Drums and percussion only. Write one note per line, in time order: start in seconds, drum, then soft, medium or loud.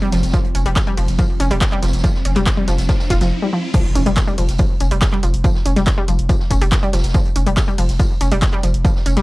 0.02 closed hi-hat soft
0.12 snare medium
0.12 open hi-hat loud
0.12 tambourine medium
0.17 snare medium
0.17 tambourine medium
0.23 snare medium
0.23 closed hi-hat medium
0.23 tambourine medium
0.29 snare medium
0.29 tambourine medium
0.33 kick loud
0.33 closed hi-hat medium
0.33 tambourine medium
0.45 closed hi-hat soft
0.55 open hi-hat loud
0.55 tambourine medium
0.66 closed hi-hat medium
0.66 closed hi-hat soft
0.76 kick loud
0.76 snare loud
0.76 clap loud
0.76 closed hi-hat medium
0.76 tambourine medium
0.87 closed hi-hat soft
0.97 open hi-hat loud
0.97 open hi-hat medium
1.08 snare soft
1.08 closed hi-hat medium
1.19 kick loud
1.19 closed hi-hat medium
1.19 tambourine medium
1.40 open hi-hat loud
1.40 tambourine medium
1.51 closed hi-hat medium
1.61 kick loud
1.61 snare loud
1.61 clap loud
1.61 closed hi-hat medium
1.61 tambourine medium
1.72 clap soft
1.82 snare medium
1.82 open hi-hat loud
1.82 tambourine medium
1.88 snare medium
1.88 tambourine medium
1.93 snare medium
1.93 closed hi-hat medium
1.93 tambourine medium
1.99 snare medium
1.99 tambourine medium
2.04 kick loud
2.04 closed hi-hat medium
2.04 tambourine medium
2.15 snare medium
2.25 open hi-hat loud
2.25 tambourine medium
2.36 snare soft
2.36 clap soft
2.36 closed hi-hat medium
2.46 kick loud
2.46 snare loud
2.46 clap loud
2.46 closed hi-hat medium
2.46 tambourine medium
2.68 snare loud
2.68 open hi-hat loud
2.68 tambourine medium
2.78 snare loud
2.78 closed hi-hat medium
2.78 tambourine medium
2.89 kick loud
2.89 snare loud
2.89 closed hi-hat medium
2.89 tambourine medium
2.99 snare loud
2.99 tambourine medium
3.10 kick medium
3.10 snare loud
3.10 open hi-hat loud
3.10 tambourine medium
3.21 snare medium
3.21 closed hi-hat medium
3.21 tambourine medium
3.74 kick loud
3.74 closed hi-hat medium
3.74 tambourine loud
3.74 crash loud
3.85 closed hi-hat soft
3.95 open hi-hat loud
3.95 tambourine medium
4.06 closed hi-hat medium
4.06 closed hi-hat soft
4.17 kick loud
4.17 snare loud
4.17 clap loud
4.17 closed hi-hat medium
4.17 tambourine medium
4.27 closed hi-hat soft
4.38 open hi-hat medium
4.49 snare medium
4.49 closed hi-hat medium
4.58 kick loud
4.58 closed hi-hat medium
4.58 tambourine medium
4.80 open hi-hat loud
4.80 tambourine medium
4.91 closed hi-hat medium
5.02 kick loud
5.02 snare loud
5.02 clap loud
5.02 closed hi-hat medium
5.02 tambourine medium
5.13 clap soft
5.23 open hi-hat medium
5.23 tambourine medium
5.34 closed hi-hat medium
5.44 kick loud
5.44 closed hi-hat medium
5.44 tambourine loud
5.55 snare medium
5.66 open hi-hat loud
5.66 tambourine medium
5.76 snare soft
5.76 closed hi-hat medium
5.86 kick loud
5.86 snare loud
5.86 clap loud
5.86 closed hi-hat medium
5.86 tambourine loud
6.08 open hi-hat loud
6.08 tambourine medium
6.19 closed hi-hat medium
6.29 kick loud
6.29 closed hi-hat medium
6.29 tambourine loud
6.40 snare soft
6.51 kick medium
6.51 open hi-hat loud
6.51 tambourine medium
6.62 closed hi-hat medium
6.62 closed hi-hat soft
6.72 kick loud
6.72 snare loud
6.72 clap loud
6.72 closed hi-hat medium
6.72 tambourine medium
6.83 closed hi-hat soft
6.93 snare medium
6.93 open hi-hat loud
6.93 tambourine medium
6.98 snare loud
6.98 tambourine medium
7.03 snare medium
7.03 closed hi-hat medium
7.03 tambourine medium
7.09 snare medium
7.09 tambourine medium
7.14 kick loud
7.14 closed hi-hat medium
7.14 tambourine loud
7.25 closed hi-hat soft
7.36 open hi-hat loud
7.36 tambourine medium
7.47 closed hi-hat medium
7.47 closed hi-hat soft
7.57 kick loud
7.57 snare loud
7.57 clap loud
7.57 closed hi-hat medium
7.57 tambourine medium
7.68 closed hi-hat soft
7.78 open hi-hat medium
7.78 open hi-hat loud
7.89 snare soft
7.89 closed hi-hat medium
8.00 kick loud
8.00 closed hi-hat medium
8.00 tambourine medium
8.21 open hi-hat loud
8.21 tambourine medium
8.32 closed hi-hat medium
8.42 kick loud
8.42 snare loud
8.42 clap loud
8.42 closed hi-hat medium
8.42 tambourine medium
8.53 clap soft
8.63 open hi-hat loud
8.63 tambourine medium
8.74 closed hi-hat medium
8.85 kick loud
8.85 closed hi-hat medium
8.85 tambourine medium
8.96 snare medium
9.06 open hi-hat loud
9.06 tambourine medium
9.17 snare soft
9.17 closed hi-hat medium